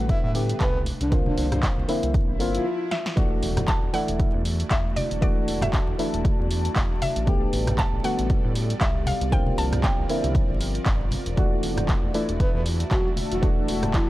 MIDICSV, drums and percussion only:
0, 0, Header, 1, 2, 480
1, 0, Start_track
1, 0, Key_signature, 1, "minor"
1, 0, Tempo, 512821
1, 1047, Time_signature, 4, 2, 24, 8
1, 13194, End_track
2, 0, Start_track
2, 0, Title_t, "Drums"
2, 87, Note_on_c, 9, 36, 110
2, 87, Note_on_c, 9, 42, 52
2, 180, Note_off_c, 9, 36, 0
2, 181, Note_off_c, 9, 42, 0
2, 327, Note_on_c, 9, 46, 101
2, 421, Note_off_c, 9, 46, 0
2, 463, Note_on_c, 9, 42, 66
2, 557, Note_off_c, 9, 42, 0
2, 564, Note_on_c, 9, 39, 112
2, 566, Note_on_c, 9, 36, 98
2, 567, Note_on_c, 9, 42, 54
2, 658, Note_off_c, 9, 39, 0
2, 660, Note_off_c, 9, 36, 0
2, 661, Note_off_c, 9, 42, 0
2, 806, Note_on_c, 9, 63, 67
2, 807, Note_on_c, 9, 46, 88
2, 900, Note_off_c, 9, 63, 0
2, 901, Note_off_c, 9, 46, 0
2, 943, Note_on_c, 9, 42, 66
2, 1036, Note_off_c, 9, 42, 0
2, 1046, Note_on_c, 9, 36, 116
2, 1047, Note_on_c, 9, 42, 56
2, 1140, Note_off_c, 9, 36, 0
2, 1141, Note_off_c, 9, 42, 0
2, 1180, Note_on_c, 9, 63, 86
2, 1274, Note_off_c, 9, 63, 0
2, 1287, Note_on_c, 9, 46, 101
2, 1381, Note_off_c, 9, 46, 0
2, 1420, Note_on_c, 9, 63, 66
2, 1423, Note_on_c, 9, 37, 66
2, 1423, Note_on_c, 9, 42, 70
2, 1425, Note_on_c, 9, 64, 88
2, 1514, Note_off_c, 9, 63, 0
2, 1516, Note_off_c, 9, 37, 0
2, 1516, Note_off_c, 9, 42, 0
2, 1519, Note_off_c, 9, 64, 0
2, 1525, Note_on_c, 9, 39, 122
2, 1526, Note_on_c, 9, 36, 104
2, 1528, Note_on_c, 9, 42, 56
2, 1619, Note_off_c, 9, 39, 0
2, 1620, Note_off_c, 9, 36, 0
2, 1622, Note_off_c, 9, 42, 0
2, 1766, Note_on_c, 9, 46, 88
2, 1860, Note_off_c, 9, 46, 0
2, 1902, Note_on_c, 9, 42, 66
2, 1995, Note_off_c, 9, 42, 0
2, 2006, Note_on_c, 9, 36, 117
2, 2008, Note_on_c, 9, 42, 55
2, 2100, Note_off_c, 9, 36, 0
2, 2101, Note_off_c, 9, 42, 0
2, 2247, Note_on_c, 9, 46, 102
2, 2341, Note_off_c, 9, 46, 0
2, 2383, Note_on_c, 9, 42, 68
2, 2476, Note_off_c, 9, 42, 0
2, 2728, Note_on_c, 9, 38, 62
2, 2822, Note_off_c, 9, 38, 0
2, 2863, Note_on_c, 9, 38, 74
2, 2957, Note_off_c, 9, 38, 0
2, 2966, Note_on_c, 9, 36, 123
2, 2967, Note_on_c, 9, 42, 55
2, 3060, Note_off_c, 9, 36, 0
2, 3061, Note_off_c, 9, 42, 0
2, 3207, Note_on_c, 9, 46, 103
2, 3301, Note_off_c, 9, 46, 0
2, 3339, Note_on_c, 9, 64, 95
2, 3342, Note_on_c, 9, 37, 64
2, 3342, Note_on_c, 9, 42, 72
2, 3342, Note_on_c, 9, 63, 67
2, 3433, Note_off_c, 9, 64, 0
2, 3435, Note_off_c, 9, 63, 0
2, 3436, Note_off_c, 9, 37, 0
2, 3436, Note_off_c, 9, 42, 0
2, 3443, Note_on_c, 9, 39, 126
2, 3446, Note_on_c, 9, 42, 57
2, 3447, Note_on_c, 9, 36, 106
2, 3537, Note_off_c, 9, 39, 0
2, 3540, Note_off_c, 9, 36, 0
2, 3540, Note_off_c, 9, 42, 0
2, 3686, Note_on_c, 9, 46, 91
2, 3780, Note_off_c, 9, 46, 0
2, 3822, Note_on_c, 9, 42, 72
2, 3916, Note_off_c, 9, 42, 0
2, 3927, Note_on_c, 9, 36, 117
2, 3928, Note_on_c, 9, 42, 55
2, 4020, Note_off_c, 9, 36, 0
2, 4021, Note_off_c, 9, 42, 0
2, 4167, Note_on_c, 9, 46, 107
2, 4260, Note_off_c, 9, 46, 0
2, 4303, Note_on_c, 9, 42, 69
2, 4397, Note_off_c, 9, 42, 0
2, 4405, Note_on_c, 9, 39, 124
2, 4407, Note_on_c, 9, 36, 109
2, 4408, Note_on_c, 9, 42, 54
2, 4499, Note_off_c, 9, 39, 0
2, 4501, Note_off_c, 9, 36, 0
2, 4502, Note_off_c, 9, 42, 0
2, 4649, Note_on_c, 9, 46, 91
2, 4653, Note_on_c, 9, 63, 75
2, 4743, Note_off_c, 9, 46, 0
2, 4746, Note_off_c, 9, 63, 0
2, 4785, Note_on_c, 9, 42, 68
2, 4878, Note_off_c, 9, 42, 0
2, 4887, Note_on_c, 9, 36, 127
2, 4889, Note_on_c, 9, 42, 54
2, 4981, Note_off_c, 9, 36, 0
2, 4983, Note_off_c, 9, 42, 0
2, 5129, Note_on_c, 9, 46, 107
2, 5223, Note_off_c, 9, 46, 0
2, 5256, Note_on_c, 9, 64, 99
2, 5261, Note_on_c, 9, 63, 68
2, 5265, Note_on_c, 9, 37, 66
2, 5265, Note_on_c, 9, 42, 69
2, 5349, Note_off_c, 9, 64, 0
2, 5355, Note_off_c, 9, 63, 0
2, 5359, Note_off_c, 9, 37, 0
2, 5359, Note_off_c, 9, 42, 0
2, 5366, Note_on_c, 9, 39, 127
2, 5367, Note_on_c, 9, 36, 108
2, 5369, Note_on_c, 9, 42, 54
2, 5460, Note_off_c, 9, 39, 0
2, 5461, Note_off_c, 9, 36, 0
2, 5463, Note_off_c, 9, 42, 0
2, 5609, Note_on_c, 9, 46, 96
2, 5702, Note_off_c, 9, 46, 0
2, 5745, Note_on_c, 9, 42, 67
2, 5839, Note_off_c, 9, 42, 0
2, 5848, Note_on_c, 9, 36, 126
2, 5849, Note_on_c, 9, 42, 54
2, 5941, Note_off_c, 9, 36, 0
2, 5943, Note_off_c, 9, 42, 0
2, 6089, Note_on_c, 9, 46, 114
2, 6183, Note_off_c, 9, 46, 0
2, 6224, Note_on_c, 9, 42, 69
2, 6318, Note_off_c, 9, 42, 0
2, 6325, Note_on_c, 9, 39, 127
2, 6328, Note_on_c, 9, 36, 110
2, 6328, Note_on_c, 9, 42, 52
2, 6419, Note_off_c, 9, 39, 0
2, 6421, Note_off_c, 9, 36, 0
2, 6422, Note_off_c, 9, 42, 0
2, 6569, Note_on_c, 9, 46, 97
2, 6574, Note_on_c, 9, 63, 77
2, 6663, Note_off_c, 9, 46, 0
2, 6668, Note_off_c, 9, 63, 0
2, 6704, Note_on_c, 9, 42, 66
2, 6797, Note_off_c, 9, 42, 0
2, 6808, Note_on_c, 9, 36, 127
2, 6808, Note_on_c, 9, 42, 51
2, 6901, Note_off_c, 9, 36, 0
2, 6901, Note_off_c, 9, 42, 0
2, 7048, Note_on_c, 9, 46, 110
2, 7142, Note_off_c, 9, 46, 0
2, 7179, Note_on_c, 9, 63, 72
2, 7182, Note_on_c, 9, 64, 105
2, 7183, Note_on_c, 9, 37, 70
2, 7183, Note_on_c, 9, 42, 67
2, 7273, Note_off_c, 9, 63, 0
2, 7276, Note_off_c, 9, 64, 0
2, 7277, Note_off_c, 9, 37, 0
2, 7277, Note_off_c, 9, 42, 0
2, 7285, Note_on_c, 9, 39, 127
2, 7287, Note_on_c, 9, 36, 111
2, 7288, Note_on_c, 9, 42, 53
2, 7378, Note_off_c, 9, 39, 0
2, 7381, Note_off_c, 9, 36, 0
2, 7381, Note_off_c, 9, 42, 0
2, 7527, Note_on_c, 9, 46, 94
2, 7621, Note_off_c, 9, 46, 0
2, 7662, Note_on_c, 9, 42, 65
2, 7756, Note_off_c, 9, 42, 0
2, 7766, Note_on_c, 9, 42, 50
2, 7767, Note_on_c, 9, 36, 127
2, 7860, Note_off_c, 9, 42, 0
2, 7861, Note_off_c, 9, 36, 0
2, 8007, Note_on_c, 9, 46, 113
2, 8101, Note_off_c, 9, 46, 0
2, 8144, Note_on_c, 9, 42, 65
2, 8238, Note_off_c, 9, 42, 0
2, 8246, Note_on_c, 9, 39, 125
2, 8247, Note_on_c, 9, 36, 116
2, 8249, Note_on_c, 9, 42, 51
2, 8340, Note_off_c, 9, 36, 0
2, 8340, Note_off_c, 9, 39, 0
2, 8343, Note_off_c, 9, 42, 0
2, 8482, Note_on_c, 9, 63, 77
2, 8489, Note_on_c, 9, 46, 99
2, 8575, Note_off_c, 9, 63, 0
2, 8582, Note_off_c, 9, 46, 0
2, 8624, Note_on_c, 9, 42, 64
2, 8718, Note_off_c, 9, 42, 0
2, 8726, Note_on_c, 9, 36, 127
2, 8730, Note_on_c, 9, 42, 51
2, 8820, Note_off_c, 9, 36, 0
2, 8823, Note_off_c, 9, 42, 0
2, 8859, Note_on_c, 9, 63, 84
2, 8952, Note_off_c, 9, 63, 0
2, 8968, Note_on_c, 9, 46, 110
2, 9062, Note_off_c, 9, 46, 0
2, 9100, Note_on_c, 9, 63, 68
2, 9104, Note_on_c, 9, 37, 69
2, 9104, Note_on_c, 9, 42, 65
2, 9105, Note_on_c, 9, 64, 86
2, 9194, Note_off_c, 9, 63, 0
2, 9198, Note_off_c, 9, 37, 0
2, 9198, Note_off_c, 9, 42, 0
2, 9198, Note_off_c, 9, 64, 0
2, 9206, Note_on_c, 9, 36, 112
2, 9206, Note_on_c, 9, 39, 122
2, 9209, Note_on_c, 9, 42, 51
2, 9299, Note_off_c, 9, 39, 0
2, 9300, Note_off_c, 9, 36, 0
2, 9302, Note_off_c, 9, 42, 0
2, 9448, Note_on_c, 9, 46, 94
2, 9542, Note_off_c, 9, 46, 0
2, 9584, Note_on_c, 9, 42, 64
2, 9677, Note_off_c, 9, 42, 0
2, 9686, Note_on_c, 9, 36, 127
2, 9688, Note_on_c, 9, 42, 51
2, 9779, Note_off_c, 9, 36, 0
2, 9781, Note_off_c, 9, 42, 0
2, 9927, Note_on_c, 9, 46, 112
2, 10021, Note_off_c, 9, 46, 0
2, 10062, Note_on_c, 9, 42, 62
2, 10156, Note_off_c, 9, 42, 0
2, 10164, Note_on_c, 9, 39, 113
2, 10166, Note_on_c, 9, 36, 112
2, 10167, Note_on_c, 9, 42, 51
2, 10257, Note_off_c, 9, 39, 0
2, 10260, Note_off_c, 9, 36, 0
2, 10260, Note_off_c, 9, 42, 0
2, 10400, Note_on_c, 9, 63, 71
2, 10407, Note_on_c, 9, 46, 96
2, 10494, Note_off_c, 9, 63, 0
2, 10500, Note_off_c, 9, 46, 0
2, 10541, Note_on_c, 9, 42, 62
2, 10635, Note_off_c, 9, 42, 0
2, 10646, Note_on_c, 9, 36, 123
2, 10646, Note_on_c, 9, 42, 52
2, 10740, Note_off_c, 9, 36, 0
2, 10740, Note_off_c, 9, 42, 0
2, 10886, Note_on_c, 9, 46, 107
2, 10979, Note_off_c, 9, 46, 0
2, 11014, Note_on_c, 9, 64, 82
2, 11022, Note_on_c, 9, 37, 73
2, 11022, Note_on_c, 9, 42, 66
2, 11026, Note_on_c, 9, 63, 75
2, 11108, Note_off_c, 9, 64, 0
2, 11115, Note_off_c, 9, 37, 0
2, 11115, Note_off_c, 9, 42, 0
2, 11120, Note_off_c, 9, 63, 0
2, 11124, Note_on_c, 9, 39, 118
2, 11127, Note_on_c, 9, 36, 108
2, 11127, Note_on_c, 9, 42, 52
2, 11218, Note_off_c, 9, 39, 0
2, 11220, Note_off_c, 9, 36, 0
2, 11221, Note_off_c, 9, 42, 0
2, 11367, Note_on_c, 9, 46, 93
2, 11460, Note_off_c, 9, 46, 0
2, 11501, Note_on_c, 9, 42, 64
2, 11595, Note_off_c, 9, 42, 0
2, 11607, Note_on_c, 9, 36, 117
2, 11607, Note_on_c, 9, 42, 51
2, 11700, Note_off_c, 9, 36, 0
2, 11701, Note_off_c, 9, 42, 0
2, 11848, Note_on_c, 9, 46, 105
2, 11942, Note_off_c, 9, 46, 0
2, 11983, Note_on_c, 9, 42, 65
2, 12076, Note_off_c, 9, 42, 0
2, 12085, Note_on_c, 9, 39, 116
2, 12087, Note_on_c, 9, 36, 110
2, 12088, Note_on_c, 9, 42, 52
2, 12179, Note_off_c, 9, 39, 0
2, 12180, Note_off_c, 9, 36, 0
2, 12182, Note_off_c, 9, 42, 0
2, 12325, Note_on_c, 9, 63, 67
2, 12328, Note_on_c, 9, 46, 97
2, 12418, Note_off_c, 9, 63, 0
2, 12421, Note_off_c, 9, 46, 0
2, 12463, Note_on_c, 9, 42, 64
2, 12557, Note_off_c, 9, 42, 0
2, 12567, Note_on_c, 9, 36, 117
2, 12568, Note_on_c, 9, 42, 52
2, 12661, Note_off_c, 9, 36, 0
2, 12662, Note_off_c, 9, 42, 0
2, 12808, Note_on_c, 9, 46, 103
2, 12901, Note_off_c, 9, 46, 0
2, 12941, Note_on_c, 9, 64, 86
2, 12943, Note_on_c, 9, 37, 73
2, 12943, Note_on_c, 9, 42, 68
2, 12946, Note_on_c, 9, 63, 66
2, 13035, Note_off_c, 9, 64, 0
2, 13037, Note_off_c, 9, 37, 0
2, 13037, Note_off_c, 9, 42, 0
2, 13039, Note_off_c, 9, 63, 0
2, 13044, Note_on_c, 9, 39, 116
2, 13047, Note_on_c, 9, 36, 105
2, 13047, Note_on_c, 9, 42, 54
2, 13138, Note_off_c, 9, 39, 0
2, 13141, Note_off_c, 9, 36, 0
2, 13141, Note_off_c, 9, 42, 0
2, 13194, End_track
0, 0, End_of_file